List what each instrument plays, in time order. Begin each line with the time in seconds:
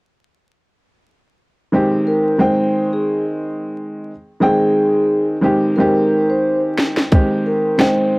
1.72 upright piano D#3 G#3 C4 G4
2.07 vibraphone A#4
2.38 upright piano D#3 G#3 C4 G5, vibraphone C5
2.93 vibraphone G#4
4.40 upright piano D#3 G#3 C4 G5, vibraphone G#4
5.41 upright piano D#3 G#3 C4 G4
5.76 upright piano D#3 G#3 C4, vibraphone A#4
5.80 upright piano G4
6.30 vibraphone C5
6.78 snare
6.97 snare
7.11 upright piano D#3 G#3 C4 G4, kick, closed hi-hat
7.46 vibraphone A#4
7.78 upright piano D#3 G#3 C4 G5, vibraphone C5, snare, closed hi-hat